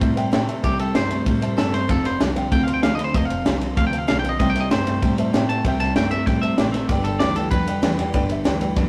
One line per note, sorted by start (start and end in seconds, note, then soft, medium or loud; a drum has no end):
0.00 0.12 A2 loud
0.00 0.30 C3 medium
0.00 0.17 G3 medium
0.00 0.30 G3 loud
0.00 0.17 C4 medium
0.00 0.17 E4 medium
0.00 0.30 C5 loud
0.00 0.10 C5 medium
0.00 0.15 C5 medium
0.00 0.11 E5 medium
0.00 0.12 A5 medium
0.00 kick loud
0.00 ride medium
0.15 0.29 A2 medium
0.15 0.32 C4 medium
0.15 0.32 E4 medium
0.15 0.26 C5 loud
0.15 0.33 C5 medium
0.15 0.27 E5 loud
0.15 0.27 G5 loud
0.15 ride medium
0.19 0.31 G3 medium
0.32 0.43 A2 loud
0.32 0.48 C3 loud
0.32 0.47 C3 medium
0.32 0.48 E3 loud
0.32 0.48 G3 loud
0.32 0.47 A3 loud
0.32 0.48 C4 loud
0.32 0.47 E4 loud
0.32 0.42 C5 loud
0.32 0.46 C5 loud
0.32 0.43 E5 medium
0.32 0.43 G5 loud
0.32 snare loud
0.32 ride medium
0.47 0.60 A2 medium
0.47 0.62 C3 medium
0.47 0.63 G3 medium
0.47 0.63 A3 medium
0.47 0.63 C4 medium
0.47 0.64 E4 medium
0.47 0.63 C5 medium
0.47 0.57 C5 medium
0.47 0.58 E5 medium
0.47 0.58 A5 loud
0.47 ride medium
0.62 0.74 C2 medium
0.62 0.79 C3 medium
0.62 0.92 C3 medium
0.62 0.80 E3 medium
0.62 0.80 G3 medium
0.62 0.92 G3 loud
0.62 0.80 C4 medium
0.62 0.79 E4 medium
0.62 0.79 G4 loud
0.62 0.73 C5 loud
0.62 0.78 C5 medium
0.62 0.73 E5 medium
0.62 0.74 A5 loud
0.62 kick loud
0.62 snare soft
0.62 ride medium
0.79 0.91 C2 medium
0.79 0.95 G3 soft
0.79 0.95 C4 soft
0.79 0.96 E4 soft
0.79 0.95 A4 medium
0.79 0.89 C5 medium
0.79 0.95 C5 medium
0.79 0.89 E5 medium
0.79 0.90 G5 medium
0.79 ride medium
0.94 1.06 G2 loud
0.94 1.11 C3 medium
0.94 1.09 C3 medium
0.94 1.11 E3 medium
0.94 1.11 G3 medium
0.94 1.09 A3 loud
0.94 1.12 C4 medium
0.94 1.10 E4 medium
0.94 1.04 C5 medium
0.94 1.56 C5 medium
0.94 1.09 C5 loud
0.94 1.05 E5 medium
0.94 1.05 A5 medium
0.94 snare loud
0.94 ride medium
1.09 1.23 G2 medium
1.09 1.25 C3 medium
1.09 1.24 G3 soft
1.09 1.25 A3 medium
1.09 1.26 C4 medium
1.09 1.26 E4 soft
1.09 1.20 C5 medium
1.09 1.26 C5 medium
1.09 1.20 E5 medium
1.09 1.21 A5 medium
1.09 ride medium
1.26 1.37 A2 loud
1.26 1.55 C3 medium
1.26 1.42 G3 medium
1.26 1.55 G3 loud
1.26 1.42 C4 medium
1.26 1.41 E4 medium
1.26 1.36 C5 medium
1.26 1.40 C5 medium
1.26 1.36 E5 medium
1.26 1.37 A5 medium
1.26 kick loud
1.26 ride medium
1.41 1.54 A2 medium
1.41 1.57 G3 medium
1.41 1.57 C4 medium
1.41 1.58 E4 medium
1.41 1.51 C5 loud
1.41 1.58 C5 medium
1.41 1.52 E5 loud
1.41 1.52 A5 loud
1.41 ride medium
1.57 1.68 G2 loud
1.57 1.73 C3 medium
1.57 1.72 C3 medium
1.57 1.73 E3 medium
1.57 1.74 G3 medium
1.57 1.72 A3 loud
1.57 1.73 C4 medium
1.57 1.72 E4 medium
1.57 1.73 A4 loud
1.57 1.67 C5 medium
1.57 1.71 C5 loud
1.57 1.68 A5 loud
1.57 snare loud
1.57 ride medium
1.72 1.85 G2 medium
1.72 1.87 C3 medium
1.72 1.88 G3 soft
1.72 1.88 A3 medium
1.72 1.88 C4 medium
1.72 1.89 E4 medium
1.72 1.89 C5 medium
1.72 1.83 C5 medium
1.72 1.89 C5 loud
1.72 1.83 E5 medium
1.72 1.84 A5 medium
1.72 snare soft
1.72 ride medium
1.88 2.00 F1 medium
1.88 2.17 F2 medium
1.88 2.17 C3 loud
1.88 2.04 F3 medium
1.88 2.05 A3 medium
1.88 2.05 C4 medium
1.88 2.04 F4 medium
1.88 2.05 A4 medium
1.88 1.98 C5 medium
1.88 2.03 C5 loud
1.88 1.99 F5 medium
1.88 1.99 A5 loud
1.88 kick loud
1.88 snare soft
1.88 ride medium
2.04 2.16 F1 medium
2.04 2.20 C4 soft
2.04 2.20 F4 soft
2.04 2.20 C5 medium
2.04 2.14 C5 medium
2.04 2.21 C5 loud
2.04 2.14 F5 medium
2.04 2.15 B5 medium
2.04 snare soft
2.04 ride medium
2.20 2.31 C2 medium
2.20 2.34 F2 medium
2.20 2.35 D3 medium
2.20 2.36 F3 medium
2.20 2.36 A3 medium
2.20 2.37 C4 medium
2.20 2.36 F4 medium
2.20 2.30 C5 medium
2.20 2.35 C5 medium
2.20 2.30 F5 medium
2.20 2.31 A5 medium
2.20 snare loud
2.20 ride medium
2.35 2.48 C2 medium
2.35 2.50 F2 medium
2.35 2.51 D3 medium
2.35 2.53 F4 medium
2.35 2.45 C5 medium
2.35 2.52 C5 medium
2.35 2.46 F5 medium
2.35 2.46 G5 loud
2.35 ride medium
2.39 2.51 C4 medium
2.51 2.62 D2 loud
2.51 2.80 F2 medium
2.51 2.80 C3 medium
2.51 2.67 A3 medium
2.51 2.68 C4 medium
2.51 2.68 F4 medium
2.51 2.61 C5 medium
2.51 2.66 C5 medium
2.51 2.61 F5 medium
2.51 2.63 G5 loud
2.51 2.62 A5 medium
2.51 kick loud
2.51 ride medium
2.63 2.76 C5 medium
2.63 2.73 F5 loud
2.63 2.77 F5 medium
2.67 2.80 D2 medium
2.67 2.83 C4 soft
2.67 2.84 F4 soft
2.67 2.83 C5 medium
2.67 2.77 C6 loud
2.67 ride medium
2.74 2.83 G5 medium
2.82 2.94 D2 loud
2.82 2.97 F2 medium
2.82 2.98 D3 loud
2.82 2.99 F3 medium
2.82 2.99 A3 medium
2.82 3.00 C4 medium
2.82 2.99 F4 medium
2.82 2.92 C5 medium
2.82 2.97 C5 loud
2.82 2.93 F5 medium
2.82 2.92 F5 medium
2.82 2.93 A5 loud
2.82 snare loud
2.82 ride medium
2.95 3.10 D2 medium
2.95 3.13 F2 medium
2.95 3.08 C5 medium
2.95 3.14 C5 medium
2.95 3.04 D#5 loud
2.95 snare soft
2.95 ride medium
2.99 3.13 D3 medium
2.99 3.15 C4 soft
2.99 3.08 F5 medium
2.99 3.09 B5 medium
3.04 3.15 C5 loud
3.14 3.25 F1 loud
3.14 3.42 F2 medium
3.14 3.43 C3 loud
3.14 3.30 F3 medium
3.14 3.30 A3 medium
3.14 3.31 C4 medium
3.14 3.30 F4 medium
3.14 3.24 C5 medium
3.14 3.28 C5 medium
3.14 3.25 D#5 loud
3.14 3.25 F5 medium
3.14 3.25 A5 loud
3.14 kick loud
3.14 ride medium
3.25 3.55 F5 loud
3.29 3.42 F1 medium
3.29 3.45 C4 soft
3.29 3.46 F4 soft
3.29 3.45 C5 medium
3.29 3.40 C5 medium
3.29 3.40 F5 medium
3.29 3.41 A5 medium
3.29 ride medium
3.45 3.56 C2 loud
3.45 3.60 F2 medium
3.45 3.60 D3 loud
3.45 3.61 F3 medium
3.45 3.61 A3 medium
3.45 3.62 C4 medium
3.45 3.62 F4 medium
3.45 3.54 C5 medium
3.45 3.60 C5 loud
3.45 3.55 F5 medium
3.45 3.56 A5 medium
3.45 snare loud
3.45 ride medium
3.61 3.73 C2 medium
3.61 3.75 F2 medium
3.61 3.76 D3 medium
3.61 3.76 C4 soft
3.61 3.77 F4 medium
3.61 3.77 C5 medium
3.61 3.71 C5 medium
3.61 3.71 F5 medium
3.61 3.71 A5 medium
3.61 ride medium
3.76 3.87 D2 loud
3.76 4.05 F2 medium
3.76 4.06 C3 medium
3.76 3.92 A3 medium
3.76 3.93 C4 medium
3.76 3.92 F4 medium
3.76 3.86 C5 medium
3.76 3.91 C5 medium
3.76 3.86 F5 medium
3.76 3.86 F5 loud
3.76 3.87 A5 medium
3.76 kick loud
3.76 ride medium
3.87 3.98 G5 medium
3.92 4.04 D2 medium
3.92 4.07 C4 soft
3.92 4.08 F4 soft
3.92 4.02 C5 loud
3.92 4.02 F5 medium
3.92 4.03 A5 loud
3.92 ride medium
3.98 4.07 F5 loud
4.07 4.19 B1 loud
4.07 4.22 F2 medium
4.07 4.23 D3 medium
4.07 4.23 F3 medium
4.07 4.24 A3 loud
4.07 4.24 C4 medium
4.07 4.24 F4 loud
4.07 4.17 C5 medium
4.07 4.22 C5 loud
4.07 4.18 F5 loud
4.07 4.18 A5 loud
4.07 snare loud
4.07 ride medium
4.19 4.38 F2 medium
4.19 4.39 C5 medium
4.19 4.33 C5 medium
4.19 4.29 G5 loud
4.24 4.36 B1 medium
4.24 4.38 D3 medium
4.24 4.39 C4 soft
4.24 4.40 F4 medium
4.24 4.33 F5 medium
4.24 4.34 A5 medium
4.24 ride medium
4.29 4.38 D#5 loud
4.39 4.50 C2 loud
4.39 4.67 C3 medium
4.39 4.55 C3 medium
4.39 4.55 E3 medium
4.39 4.68 G3 loud
4.39 4.55 G3 medium
4.39 4.55 C4 medium
4.39 4.54 E4 medium
4.39 4.49 C5 loud
4.39 4.53 C5 medium
4.39 4.49 D#5 loud
4.39 4.49 E5 medium
4.39 4.50 G5 loud
4.39 kick loud
4.39 snare soft
4.39 ride medium
4.50 4.60 G5 loud
4.54 4.67 C2 medium
4.54 4.70 G3 soft
4.54 4.71 C4 medium
4.54 4.71 E4 medium
4.54 4.70 C5 medium
4.54 4.64 C5 medium
4.54 4.65 E5 medium
4.54 4.65 G5 medium
4.54 snare soft
4.54 ride medium
4.60 4.70 D#5 loud
4.70 4.82 G2 loud
4.70 4.85 C3 medium
4.70 4.86 C3 medium
4.70 4.87 E3 medium
4.70 4.87 G3 medium
4.70 4.85 A3 medium
4.70 4.87 C4 medium
4.70 4.86 E4 medium
4.70 4.80 C5 medium
4.70 5.32 C5 loud
4.70 4.84 C5 loud
4.70 4.81 E5 medium
4.70 4.81 G5 medium
4.70 snare loud
4.70 ride medium
4.85 4.98 G2 medium
4.85 5.00 C3 medium
4.85 5.01 G3 medium
4.85 5.01 A3 medium
4.85 5.02 C4 soft
4.85 5.02 E4 medium
4.85 5.01 C5 medium
4.85 4.96 C5 medium
4.85 4.96 E5 medium
4.85 4.97 G5 medium
4.85 ride medium
5.02 5.13 A2 medium
5.02 5.30 C3 medium
5.02 5.30 G3 loud
5.02 5.18 G3 medium
5.02 5.18 C4 medium
5.02 5.18 E4 medium
5.02 5.12 C5 medium
5.02 5.17 C5 medium
5.02 5.12 E5 medium
5.02 5.13 G5 medium
5.02 kick loud
5.02 ride medium
5.18 5.29 A2 medium
5.18 5.33 G3 medium
5.18 5.33 C4 medium
5.18 5.34 E4 medium
5.18 5.33 C5 medium
5.18 5.27 C5 loud
5.18 5.28 E5 loud
5.18 5.28 A5 loud
5.18 ride medium
5.33 5.44 A2 loud
5.33 5.47 C3 medium
5.33 5.49 C3 medium
5.33 5.49 E3 loud
5.33 5.49 G3 loud
5.33 5.47 A3 medium
5.33 5.49 C4 loud
5.33 5.49 E4 loud
5.33 5.43 C5 loud
5.33 5.48 C5 loud
5.33 5.43 E5 loud
5.33 5.44 G5 loud
5.33 snare loud
5.33 ride medium
5.49 5.61 A2 medium
5.49 5.63 C3 medium
5.49 5.64 G3 soft
5.49 5.63 A3 medium
5.49 5.64 C4 soft
5.49 5.65 E4 medium
5.49 5.64 C5 medium
5.49 5.59 C5 medium
5.49 5.59 E5 medium
5.49 5.60 G5 medium
5.49 5.65 A5 loud
5.49 ride medium
5.64 5.75 C2 loud
5.64 5.80 C3 medium
5.64 5.93 C3 medium
5.64 5.80 E3 medium
5.64 5.80 G3 medium
5.64 5.93 G3 loud
5.64 5.81 C4 medium
5.64 5.80 E4 medium
5.64 5.74 C5 loud
5.64 5.78 C5 loud
5.64 5.75 E5 medium
5.64 5.80 G5 loud
5.64 5.75 G5 loud
5.64 kick loud
5.64 ride medium
5.80 5.92 C2 medium
5.80 5.95 G3 soft
5.80 5.96 C4 soft
5.80 5.96 E4 medium
5.80 5.95 C5 medium
5.80 5.90 C5 medium
5.80 5.90 E5 medium
5.80 5.91 G5 medium
5.80 5.95 A5 loud
5.80 snare soft
5.80 ride medium
5.95 6.06 G2 loud
5.95 6.11 C3 medium
5.95 6.10 C3 medium
5.95 6.11 E3 medium
5.95 6.12 G3 medium
5.95 6.10 A3 loud
5.95 6.12 C4 medium
5.95 6.11 E4 medium
5.95 6.05 C5 medium
5.95 6.09 C5 medium
5.95 6.05 E5 medium
5.95 6.11 G5 medium
5.95 6.06 G5 medium
5.95 snare loud
5.95 ride medium
6.11 6.23 G2 medium
6.11 6.25 C3 medium
6.11 6.25 G3 medium
6.11 6.26 A3 medium
6.11 6.26 C4 medium
6.11 6.27 E4 medium
6.11 6.27 C5 medium
6.11 6.21 C5 medium
6.11 6.26 E5 loud
6.11 6.21 E5 medium
6.11 6.22 A5 medium
6.11 ride medium
6.26 6.37 A2 medium
6.26 6.55 C3 medium
6.26 6.42 G3 medium
6.26 6.55 G3 medium
6.26 6.43 C4 medium
6.26 6.42 E4 medium
6.26 6.36 C5 medium
6.26 6.41 C5 medium
6.26 6.37 E5 medium
6.26 6.41 G5 medium
6.26 6.37 G5 medium
6.26 kick loud
6.26 snare soft
6.26 ride medium
6.42 6.54 A2 medium
6.42 6.58 C4 soft
6.42 6.59 E4 soft
6.42 6.52 C5 medium
6.42 6.58 C5 medium
6.42 6.58 E5 medium
6.42 6.52 E5 medium
6.42 6.53 A5 loud
6.42 ride medium
6.46 6.58 G3 soft
6.58 6.69 A1 medium
6.58 6.74 C3 medium
6.58 6.72 C3 medium
6.58 6.74 E3 medium
6.58 6.74 G3 medium
6.58 6.72 A3 medium
6.58 6.74 C4 medium
6.58 6.73 E4 loud
6.58 6.67 C5 medium
6.58 6.72 C5 loud
6.58 6.72 D5 medium
6.58 6.68 E5 medium
6.58 6.68 G5 loud
6.58 snare loud
6.58 ride medium
6.72 6.86 A1 medium
6.72 6.88 C3 medium
6.72 6.88 A3 medium
6.72 6.90 C4 medium
6.72 6.90 E4 medium
6.72 6.89 C5 medium
6.72 6.83 C5 medium
6.72 6.88 E5 loud
6.72 6.84 E5 medium
6.72 6.84 A5 medium
6.72 snare soft
6.72 ride medium
6.77 6.88 G3 soft
6.88 7.00 G1 loud
6.88 7.17 G2 medium
6.88 7.18 D3 loud
6.88 7.05 G3 medium
6.88 7.05 D4 medium
6.88 7.05 G4 medium
6.88 6.99 B4 medium
6.88 7.03 B4 medium
6.88 7.04 D5 loud
6.88 6.99 D5 medium
6.88 7.00 G5 loud
6.88 kick loud
6.88 snare soft
6.88 ride medium
7.04 7.17 G1 medium
7.04 7.20 D4 soft
7.04 7.21 G4 soft
7.04 7.20 A4 medium
7.04 7.20 B4 medium
7.04 7.14 B4 medium
7.04 7.15 D5 medium
7.04 7.15 G5 medium
7.04 ride medium
7.19 7.31 D2 loud
7.19 7.35 G2 medium
7.19 7.35 E3 loud
7.19 7.36 G3 medium
7.19 7.37 D4 medium
7.19 7.37 G4 medium
7.19 7.30 B4 medium
7.19 7.35 B4 medium
7.19 7.35 D5 loud
7.19 7.30 D5 medium
7.19 7.31 G5 medium
7.19 snare loud
7.19 ride medium
7.36 7.48 D2 medium
7.36 7.50 G2 medium
7.36 7.50 E3 loud
7.36 7.52 D4 soft
7.36 7.53 G4 medium
7.36 7.50 A4 medium
7.36 7.52 B4 medium
7.36 7.46 B4 medium
7.36 7.46 D5 medium
7.36 7.47 G5 medium
7.36 ride medium
7.51 7.62 F2 loud
7.51 7.80 G2 medium
7.51 7.80 D3 loud
7.51 7.68 D4 medium
7.51 7.67 G4 medium
7.51 8.12 B4 loud
7.51 7.61 B4 medium
7.51 7.66 B4 medium
7.51 7.62 D5 medium
7.51 7.62 G5 medium
7.51 kick loud
7.51 ride medium
7.67 7.79 F2 medium
7.67 7.82 D4 soft
7.67 7.83 G4 soft
7.67 7.76 B4 medium
7.67 7.83 B4 medium
7.67 7.77 D5 medium
7.67 7.78 G5 loud
7.67 ride medium
7.82 7.93 E2 loud
7.82 7.97 G2 medium
7.82 7.97 E3 medium
7.82 7.98 G3 loud
7.82 7.99 D4 loud
7.82 7.97 G4 medium
7.82 7.92 B4 medium
7.82 7.95 B4 medium
7.82 7.93 D5 medium
7.82 7.93 G5 loud
7.82 snare loud
7.82 ride loud
7.97 8.10 E2 medium
7.97 8.13 G2 medium
7.97 8.13 E3 medium
7.97 8.13 G4 medium
7.97 8.13 B4 medium
7.97 8.08 B4 medium
7.97 8.08 D5 medium
7.97 8.08 G5 loud
7.97 snare soft
7.97 ride medium
8.13 8.25 G1 loud
8.13 8.42 G2 medium
8.13 8.42 D3 loud
8.13 8.29 G3 medium
8.13 8.30 D4 medium
8.13 8.29 G4 medium
8.13 8.23 B4 loud
8.13 8.28 B4 loud
8.13 8.24 D5 loud
8.13 8.24 G5 loud
8.13 kick loud
8.13 ride medium
8.29 8.42 G1 medium
8.29 8.44 D4 medium
8.29 8.44 G4 medium
8.29 8.39 B4 medium
8.29 8.45 B4 medium
8.29 8.39 D5 medium
8.29 8.40 E5 loud
8.29 ride medium
8.44 8.56 D2 loud
8.44 8.59 G2 medium
8.44 8.60 E3 loud
8.44 8.60 G3 medium
8.44 8.61 D4 loud
8.44 8.61 G4 loud
8.44 8.54 B4 medium
8.44 8.59 B4 loud
8.44 8.55 D5 medium
8.44 8.56 G5 loud
8.44 snare loud
8.44 ride medium
8.60 8.73 D2 medium
8.60 8.75 G2 medium
8.60 8.75 E3 medium
8.60 8.76 D4 medium
8.60 8.77 G4 medium
8.60 8.70 B4 medium
8.60 8.76 B4 medium
8.60 8.70 D5 medium
8.60 8.71 G5 loud
8.60 ride medium
8.76 8.87 F2 loud
8.76 8.89 G2 medium
8.76 8.89 D3 loud
8.76 8.89 G3 medium
8.76 8.89 D4 medium
8.76 8.89 G4 medium
8.76 8.86 B4 medium
8.76 8.89 B4 medium
8.76 8.86 D5 medium
8.76 8.87 A5 loud
8.76 kick loud
8.76 snare soft
8.76 ride medium